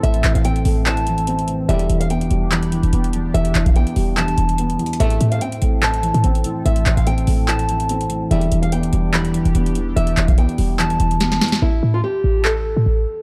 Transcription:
Already playing: A2 E3 A3 C4 A4
0.03 A1 A2 E5, closed hi-hat
0.14 closed hi-hat
0.24 A1 E3, clap, closed hi-hat
0.35 A1 F5, closed hi-hat
0.45 C4 G5, closed hi-hat
0.56 closed hi-hat
0.65 A1 A3, open hi-hat
0.86 A2 A5, clap, closed hi-hat
0.97 closed hi-hat
1.07 E3, closed hi-hat
1.18 closed hi-hat
1.27 C4, closed hi-hat
1.39 closed hi-hat
1.48 A2, closed hi-hat
1.69 E1 E2 D3 G3 D4 G4 E5, closed hi-hat
1.79 closed hi-hat
1.89 E1 E3, closed hi-hat
2.00 F5, closed hi-hat
2.10 B3 G5, closed hi-hat
2.21 closed hi-hat
2.31 E1 G3, closed hi-hat
2.52 E2 B5, clap, closed hi-hat
2.63 closed hi-hat
2.72 E3, closed hi-hat
2.83 E1, closed hi-hat
2.93 E1 B3, closed hi-hat
3.04 closed hi-hat
3.13 E2, closed hi-hat
3.34 E1 E2 E5, closed hi-hat
3.45 closed hi-hat
3.55 E1 E3, clap, closed hi-hat
3.66 F5, kick, closed hi-hat
3.76 B3 G5, closed hi-hat
3.87 closed hi-hat
3.96 E1 G3, open hi-hat
4.17 E2 A5, clap, closed hi-hat
4.28 closed hi-hat
4.37 E1 E3, closed hi-hat
4.49 closed hi-hat
4.58 B3, closed hi-hat
4.70 closed hi-hat
4.79 E2, closed hi-hat
4.86 closed hi-hat
4.93 closed hi-hat
5.00 A1 E2 A2 C3 A3 C4 A4 E5, closed hi-hat
5.10 closed hi-hat
5.21 A2 E3, closed hi-hat
5.32 F5, closed hi-hat
5.41 C4 G5, closed hi-hat
5.52 closed hi-hat
5.62 A1 A3, closed hi-hat
5.82 A2 A5, clap, closed hi-hat
5.94 closed hi-hat
6.03 E3, closed hi-hat
6.14 A2, closed hi-hat
6.24 A1 C4, closed hi-hat
6.35 closed hi-hat
6.44 A2, closed hi-hat
6.65 A1 A2 E5, closed hi-hat
6.76 closed hi-hat
6.86 A1 E3, clap, closed hi-hat
6.97 A1 F5, closed hi-hat
7.07 C4 G5, closed hi-hat
7.18 closed hi-hat
7.27 A1 A3, open hi-hat
7.48 A2 A5, clap, closed hi-hat
7.59 closed hi-hat
7.69 E3, closed hi-hat
7.80 closed hi-hat
7.89 C4, closed hi-hat
8.01 closed hi-hat
8.10 A2, closed hi-hat
8.31 E1 E2 D3 E3 G3 D4 G4 E5, closed hi-hat
8.41 closed hi-hat
8.52 E1 E3, closed hi-hat
8.62 F5, closed hi-hat
8.72 B3 G5, closed hi-hat
8.83 closed hi-hat
8.93 E1 G3, closed hi-hat
9.14 E2 B5, clap, closed hi-hat
9.25 closed hi-hat
9.34 E3, closed hi-hat
9.45 E1, closed hi-hat
9.55 E1 B3, closed hi-hat
9.66 closed hi-hat
9.75 E2, closed hi-hat
9.96 E1 E2 E5, closed hi-hat
10.07 closed hi-hat
10.17 E1 E3, clap, closed hi-hat
10.28 F5, kick, closed hi-hat
10.38 B3 G5, closed hi-hat
10.49 closed hi-hat
10.58 E1 G3, open hi-hat
10.79 E2 A5, clap, closed hi-hat
10.90 closed hi-hat
11.00 E1 E3, closed hi-hat
11.11 closed hi-hat
11.20 B3, snare, closed hi-hat
11.32 snare, closed hi-hat
11.41 E2, snare, closed hi-hat
11.48 closed hi-hat
11.52 snare, closed hi-hat
11.62 A1 E4
11.83 A2
11.94 F4
12.04 G4
12.24 A1
12.45 A4, clap
12.77 A2
12.86 A1

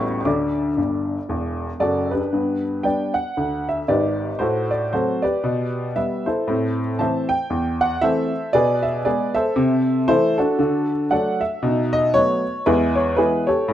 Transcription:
Already playing: A1 A2 G3 B3 F#4 C#5 C#6
0.20 C#6
0.25 D2 D3 D5 D6
0.77 G1 G2
1.29 E1 E2
1.80 F#1 F#2 F#4 A4 D5
2.11 D4 G4 B4
2.33 G2 B3
2.83 G3 B3 D4 B4 D5 G5
3.14 F#5
3.37 D2
3.69 E5
3.88 G#1 G#2 G4 B4 D5
4.39 A2 F#4 A4 C5
4.71 D5
4.93 F#3 A3 C4 F#4 A4 C5
5.22 G4 B4 D5
5.44 B2
5.95 G3 B3 E5
6.26 E4 A4 C5
6.48 A2 C4
6.99 E3 A3 C4 C5 E5 A5
7.29 G5
7.50 E2
7.81 F#5
8.02 E3 A3 C4 A4 C5 E5
8.53 B2 G#4 B4 D5
8.83 E5
9.05 G#3 B3 G#4 B4 D5
9.35 A4 C5 E5
9.56 C3
10.08 E3 A3 E4 A4 C5
10.38 D4 F#4 A4
10.59 D3 F#4
11.11 F#3 A3 A4 D5 F#5
11.41 E5
11.63 B2 D#4
11.93 D#5
12.14 F#3 A3 B3 C#5
12.66 E2 G#3 E4 G#4 B4
12.95 C#5
13.16 E3 G#3 B3 E4 G#4 B4
13.47 G4 A4 C#5
13.68 A2 C#4

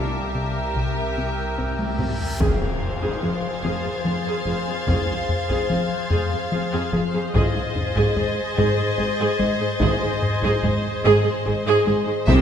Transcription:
Already playing: C2 C3 G4 A#4 E5 G5 A5 D6, reverse cymbal
0.35 C3
0.76 C3, taiko
1.04 D#6
1.18 C3
1.58 C4, taiko
1.79 taiko high
1.99 C4, taiko low-mid
2.20 taiko low
2.39 F1 F2 G#4 C5 F5 G#6, taiko, impact
2.60 F2 G#4
2.82 F2
3.01 F2 G#4, taiko
3.23 F1 F2 F3 G#4 A6
3.63 F1 F2 G#4
3.84 F2 G#4
4.05 F1 F2 F3 G#4
4.26 F2 G#4
4.46 F1 F2 F3 G#4
4.67 F2 G#4
4.87 F1 F2 G#4, taiko
5.08 F2 G#4
5.29 F2
5.49 F2 G#4, taiko
5.69 F1 F2 F3 G#4
6.10 F1 F2 G#4
6.31 F2 G#4
6.52 F1 F2 F3 G#4
6.72 F2 G#4
6.92 F1 F2 F3 G#4
7.13 F2 G#4
7.33 G#1 G#2 G#4 C5 D#5 G#6 A6, taiko
7.54 G#2 G#4
7.75 G#2, taiko low
7.96 G#2 G#4, taiko
8.16 G#1 G#2 G#3 G#4, taiko low
8.56 G#1 G#2 G#4
8.78 G#2 G#4
8.98 G#1 G#2 G#3 G#4
9.20 G#2 G#4
9.40 G#1 G#2 G#3 G#4
9.60 G#2 G#4
9.80 G#1 G#2 G#4, taiko
10.02 G#2 G#4
10.22 G#2, taiko low
10.42 G#2 G#4, taiko
10.63 G#1 G#2 G#3 G#4, taiko low
11.04 G#1 G#2 G#4
11.24 G#2 G#4
11.45 G#1 G#2 G#3 G#4
11.65 G#2 G#4
11.86 G#1 G#2 G#3 G#4
12.06 G#2 G#4
12.25 C2 C3 G4 C5 E5 G5 C6 E6, taiko

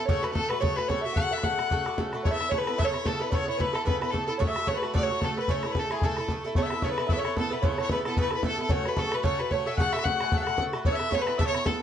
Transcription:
0.05 C#3 F#4 C#5 C#6, bodhran
0.09 A3 A4
0.21 F#4 A4 B4 B5, bodhran
0.25 A3
0.32 C#3 A3 F#4 A4 A5, bodhran
0.36 A4
0.49 A3 F#4 A4 B4 B5, bodhran
0.60 C#3 A3 F#4 A4 C#5 C#6, bodhran
0.74 F#4 A4 B4 B5
0.78 A3, bodhran
0.88 C#3 A3 F#4 A4 C#5 C#6, bodhran
1.01 A4 E5
1.05 A3 F#4 E5
1.13 C#3 A3 F#5 F#6, bodhran
1.17 F#4 A4
1.31 A3 F#4 A4 E5
1.38 F#6, bodhran
1.42 C#3 A3 F#4 A4 F#5, bodhran
1.57 A3 F#4 A4, bodhran
1.70 C#3 A3 F#4 A4, bodhran
1.85 A3 F#4 A4 D6, bodhran
1.98 C#3 A3 F#4 A4, bodhran
2.13 A3 F#4 A4, bodhran
2.23 C#3 B3 E4 A4 C#5 C#6, bodhran
2.31 E5 E6
2.40 B3 E4 A4, bodhran
2.49 C#3 B3 E4 C#5 C#6, bodhran
2.54 A4 B4
2.58 B4 B5
2.64 E4 A4 B4, bodhran
2.69 B3
2.78 C#3 B3 E4 A4 E5 E6, bodhran
2.84 C#5 C#6
2.93 B3 E4 A4, bodhran
3.04 C#3 B3 E4 A4 A5, bodhran
3.19 B3 E4 A4 B4 B5
3.30 C#3 B3 E4 A4 C#5 D5 C#6, bodhran
3.34 C#5
3.46 B3 E4 A4 C#5 C#6
3.57 C#3 B3 E4 A4 B4 B5, bodhran
3.73 B3 E4 A4 A5, bodhran
3.85 C#3 B3 E4 A4 B4 B5, bodhran
4.01 B3 E4 A4 B4 B5, bodhran
4.11 C#3 B3 E4 A4, bodhran
4.17 A5
4.27 B3 E4 A4 A5
4.38 C#3 A3 F#4 A4 C#5 C#6, bodhran
4.47 E5 E6
4.55 A3 F#4 A4, bodhran
4.66 C#3 A3 F#4 A4 C#5 C#6, bodhran
4.73 B4 B5
4.82 A3 F#4 A4, bodhran
4.94 C#3 A3 F#4 A4 D5 D6, bodhran
5.02 C#5 C#6
5.10 A3 F#4 A4
5.20 C#3 A3 F#4 A4 A5, bodhran
5.25 A4
5.36 A3 F#4 A4 B4 B5
5.47 C#3 A3 E4 A4 C#5 C#6, bodhran
5.63 A3 E4 A4, bodhran
5.68 B4 B5
5.72 C#3 A4 B4 A5, bodhran
5.77 A3 E4 A4
5.90 A3 E4 G#4 A4 G#5, bodhran
6.02 C#3 A3 E4 A4 A5, bodhran
6.17 E4 A4, bodhran
6.21 A3
6.28 C#3 A3 E4 A4, bodhran
6.44 A3 E4 A4
6.55 C#3 B3 E4 A4 C#5 C#6, bodhran
6.62 E5 E6
6.70 E4 A4, bodhran
6.75 B3
6.82 C#3 B3 E4 A4 C#5 C#6, bodhran
6.89 B4 B5
6.98 B3 E4 A4, bodhran
7.06 C#3 B3 E5 E6, bodhran
7.11 E4 A4 E5
7.16 C#5 C#6
7.25 B3 E4 A4, bodhran
7.36 C#3 B3 E4 A4 A5, bodhran
7.50 B3 E4 A4 B4 B5
7.62 C#3 B3 E4 A4 C#5 C#6, bodhran
7.77 B3 E4 A4 C#5 C#6, bodhran
7.82 C#5
7.89 C#3 B3 E4 A4 B4 B5, bodhran
8.05 B3 E4 A4 A5, bodhran
8.16 C#3 B3 E4 A4 B4 B5, bodhran
8.31 B3 E4 A4 B4 B5, bodhran
8.35 B4
8.43 C#3 B3 E4 A4 A5, bodhran
8.47 A4
8.57 B3 E4 A4 A5
8.62 A4
8.69 C#3 A3 F#4 A4 C#5 C#6, bodhran
8.85 A3 F#4 A4 B4 B5, bodhran
8.96 C#3 A3 F#4 A4 A5, bodhran
9.11 A3 F#4 A4 B4 B5, bodhran
9.23 C#3 A3 F#4 A4 C#5 C#6, bodhran
9.39 A3 F#4 A4 B4 B5, bodhran
9.51 C#3 A3 F#4 A4 C#5 C#6, bodhran
9.66 A3 F#4 A4 E5 E6
9.76 C#3 F#5 G#5 F#6, bodhran
9.80 A3 F#4 A4
9.92 F#4 A4 E5 E6, bodhran
9.97 A3, bodhran
10.03 C#3 A3 F#4 F#5 F#6, bodhran
10.07 A4
10.20 A3 F#4 A4 F#5 G#5 F#6, bodhran
10.32 C#3 A3 F#4 A4, bodhran
10.37 E5 F#5 F#6
10.42 A4 F#5
10.47 A3 F#4, bodhran
10.57 C#3 A3 F#4 A4, bodhran
10.73 A3 F#4 A4, bodhran
10.85 C#3 B3 E4 A4 C#5 C#6, bodhran
10.92 E5 E6
10.99 B3 E4 A4, bodhran
11.10 C#3 B3 E4 A4 C#5 C#6, bodhran
11.15 C#5 B5
11.19 B4
11.26 B3 E4 A4, bodhran
11.37 C#3 B3 E4 A4 E5 E6, bodhran
11.45 C#5 C#6
11.53 B3 E4 A4, bodhran
11.64 C#3 B3 E4 A4 A5, bodhran

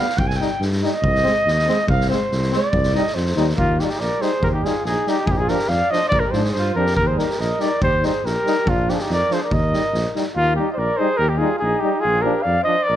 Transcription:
Already playing: F5
0.09 snare
0.17 C2 G5, kick
0.26 G#5, snare
0.36 D#4 G5
0.41 G3, snare
0.60 G2, snare
0.72 snare
0.81 G3 D#4 D#5, snare
1.02 C2, kick
1.15 snare
1.23 G#3 C4, snare
1.46 D#2, snare
1.59 snare
1.67 G#3 C4, snare
1.88 C2 F5, kick
2.01 snare
2.08 G#3 C4 C5, snare
2.31 C2, snare
2.42 snare
2.51 G#3 C4 D5, snare
2.73 C2, kick
2.83 snare
2.94 G3 D#4 D#5, snare
3.07 snare
3.14 F2 C5, snare
3.26 snare
3.36 D#2 G3 D#4, snare
3.49 snare
3.56 D#2 A#3 F4, kick
3.79 G3 D#4 G4, snare
3.84 D4 F4
3.89 D#4 G4, snare
3.99 A#1 A#4 D5, snare
4.20 G3 D#4 G#4 C5, snare
4.41 D#2 G4 A#4, kick
4.45 G#4 C5
4.49 G4
4.54 D#4 G4
4.63 G3 D#4 F4 G#4, snare
4.85 A#1 D#4 G#4, snare
5.07 G3 D#4 G4, snare
5.26 A#1 G#4, kick
5.30 F4 G4
5.35 D#4 G#4
5.41 F4
5.48 F3 D4 G4 A#4, snare
5.59 snare
5.68 F2 D5 F5, snare
5.91 F3 D4 C5 D#5, snare
6.09 A#1 D5, kick
6.13 A#4
6.20 A#4
6.26 G4
6.31 G#2 F3 D4 C5, snare
6.36 G#4
6.45 snare
6.52 G2 C5, snare
6.58 F4
6.75 F2 F3 D4 G4 A#4
6.86 snare
6.96 D#2 G4 A#4, kick
7.07 G#4 C5
7.16 G3 D#4 A#4, snare
7.20 G4
7.30 snare
7.39 A#1 A#4 D#5, snare
7.59 G3 D#4 D5, snare
7.63 A#4
7.81 D#2 G4 C5, kick
8.03 G3 D#4 G#4 C5, snare
8.24 A#1 G4 A#4, snare
8.45 G3 D#4, snare
8.66 A#1 D4 F4, kick
8.87 F3 D4 G4, snare
8.92 D#4 F4 G#4
8.99 D#4 G4, snare
9.10 F2 A#4 D5, snare
9.29 F3 D4 C5, snare
9.35 G#4
9.43 A#4 D5
9.51 D#2 D#5, kick
9.56 A#4
9.73 G3 D#4, snare
9.93 A#1, snare
10.15 G3 D#4, snare
10.35 D#2 A#3 F4
10.56 G3 D#4 G4
10.72 C5 D#5
10.76 A#1 A#4 D5
10.96 D#4 G#4 C5
11.01 G3
11.17 D#2 G4 A#4
11.29 D#4 G4
11.38 D#4 F4 G#4
11.42 G3
11.59 A#1 D#4 G#4
11.79 G3 D#4 G4
11.83 D#4
12.00 F4 G#4
12.05 A#1
12.22 F3 D4 G4 A#4
12.42 D5 F5
12.46 F2
12.62 D4 C5 D#5
12.66 F3
12.83 D5
12.88 A#1 A#4

